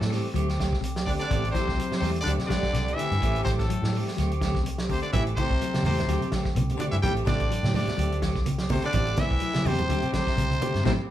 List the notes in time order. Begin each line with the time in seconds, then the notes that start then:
Already playing: A2 A3 A4
0.01 A2 A3 C4, muted clean electric guitar stroke, snare
0.10 E3 G3 A3 C4 G4, snare, open hi-hat
0.34 D2 F#3 A3 C4 G4, closed hi-hat
0.49 C4 G4, snare, closed hi-hat
0.58 A3 C4 G4, muted clean electric guitar stroke, kick, snare, closed hi-hat
0.73 C2, kick, snare
0.81 C3, closed hi-hat
0.96 C4 G4, snare, closed hi-hat
1.05 D2 D3 A3 C4 D4 G4 D5, kick, open hi-hat
1.19 D3 D4 D5, closed hi-hat
1.30 A1 C3 E3 A3 C4 G4, kick, closed hi-hat
1.44 A3 C4 G4, closed hi-hat
1.51 C3 E3 A3 C5, kick, snare, closed hi-hat
1.55 C4 G4
1.67 C2, kick, snare
1.78 F#3, closed hi-hat
1.91 A3 C4 G4, muted fingered electric bass stroke, snare, closed hi-hat
1.98 E2 C3 G3 C5
2.02 E3 A3 C4 G4, snare, open hi-hat
2.16 closed hi-hat
2.21 D3 D4 D5
2.26 D2 F#3 A3 C4 G4, closed hi-hat
2.38 C3 C4 G4, snare, closed hi-hat
2.46 D3 G3 D4 D5
2.50 A3 C4 G4, kick, snare, closed hi-hat
2.63 muted fingered electric bass stroke, kick, snare
2.73 C2 C3, snare, closed hi-hat
2.88 C4 G4, closed hi-hat
2.94 D3 E3 E4 E5
2.98 A3 C4 G4, closed hi-hat
3.11 G2, closed hi-hat
3.21 A1 E3 A3 C4 G4, muted clean electric guitar stroke, kick, closed hi-hat
3.36 A3 C4 G4, closed hi-hat
3.43 A1 C3 E3 C4 C5, kick, snare, closed hi-hat
3.48 E3 A3 C4 G4
3.57 A2 A3 A4, kick, snare, closed hi-hat
3.70 F#3, closed hi-hat
3.82 A2 A3 C4 G4, snare
3.93 E3 G3 A3 C4 G4, open hi-hat
4.08 snare
4.17 D2 F#3 A3 C4 G4, snare, closed hi-hat
4.31 C4 G4, closed hi-hat
4.41 D3 A3 C4 G4, kick, snare, closed hi-hat
4.55 C2, kick, snare
4.64 C3, closed hi-hat
4.78 C4 G4, snare, closed hi-hat
4.89 D2 C3 D3 A3 C4 G4 C5, kick, open hi-hat
5.02 D3 D4 D5, closed hi-hat
5.13 A1 C3 E3 A3 C4 E4 G4 E5, kick, closed hi-hat, low conga
5.26 A3 C4 G4, closed hi-hat
5.36 C3 E3 A3 G4 C5, muted clean electric guitar stroke, kick, closed hi-hat, high conga
5.40 C4
5.50 C2, kick
5.61 F#3, closed hi-hat, high conga
5.74 A3 C4 G4, muted fingered electric bass stroke, snare, closed hi-hat, high conga
5.83 E2 C3 E3 A3 C4 G4 C5, open hi-hat, high conga, low conga
5.99 snare, closed hi-hat, high conga, low conga
6.07 D2 F#3 A3 C4 G4, snare, closed hi-hat, high conga
6.20 C3 C4 G4, closed hi-hat
6.32 D3 A3 C4 G4, kick, snare, closed hi-hat
6.45 muted fingered electric bass stroke, kick, snare
6.55 C2 C3, closed hi-hat, high conga
6.69 C4 G4, closed hi-hat, high conga
6.77 D3 D4 D5, closed hi-hat, high conga
6.82 A3 C4 G4
6.92 G2 E3 E4 E5, closed hi-hat
7.02 A1 C3 E3 G3 A3 C4 G4 G5, kick, closed hi-hat, low conga
7.16 A3 C4 G4, closed hi-hat
7.25 A1 D3 E3 A3 C4 D4 G4 D5, kick, snare, closed hi-hat, high conga
7.40 kick, closed hi-hat
7.50 F#3, closed hi-hat, high conga
7.63 A2 C4 G4, snare, high conga
7.73 D3 E3 G3 A3 C4 D4 G4 D5, snare, open hi-hat, low conga
7.88 snare, high conga, low conga
7.97 D2 F#3 A3 C4 G4, closed hi-hat, high conga
8.12 C4 G4, closed hi-hat
8.22 D3 A3 C4 G4, kick, snare, closed hi-hat
8.35 C2, kick, snare
8.46 C3, closed hi-hat, high conga
8.58 C4 G4, snare, closed hi-hat
8.69 D2 C3 D3 A3 C4 G4 C5, kick, open hi-hat, high conga
8.73 C4
8.82 D3 D4 D5, closed hi-hat
8.92 A1 C3 E3 A3 C4 G4, kick, closed hi-hat, low conga
9.07 A3 C4 G4, closed hi-hat
9.17 E3 A3 C4 E4 E5, muted clean electric guitar stroke, kick, snare, closed hi-hat, high conga
9.31 C2, kick
9.40 F#3, closed hi-hat, high conga
9.54 A3 C4 G4, muted fingered electric bass stroke, snare, closed hi-hat, high conga
9.65 E2 C3 E3 G3 C4 G4 C5, muted clean electric guitar stroke, open hi-hat, high conga, low conga
9.78 closed hi-hat, high conga, low conga
9.89 D2 F#3 A3 C4 G4, closed hi-hat, high conga
10.02 C3 C4 G4, closed hi-hat
10.13 C3 D3 A3 C4 G4 C5, kick, snare, closed hi-hat
10.27 muted fingered electric bass stroke, kick, snare
10.36 C2 C3, closed hi-hat, high conga
10.51 C4 G4, closed hi-hat, high conga
10.61 D3 A3 C4 G4, closed hi-hat, high conga
10.75 G2, snare, closed hi-hat
10.84 A1 A2 C3 E3 A3 C4 E4 C5, kick, snare, low conga